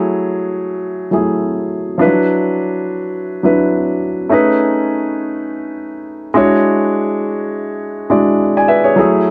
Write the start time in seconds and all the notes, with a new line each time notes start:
Already playing: F#3 A3 E4 G#4
1.11 F#3 A3 E4 G#4
1.98 F3 D4 E4 B4
2.05 F#3
3.43 F#3 D4 E4 B4
4.29 A3 C#4 D#4 G#4
4.33 B4
6.34 G#3 D4 E4 F#4 C#5
8.10 G#3 D4 E4 F#4 D5
8.57 D5 G#5
8.68 B4 E5
8.84 G#4 C#5
8.96 F#3 A3 E4 G#4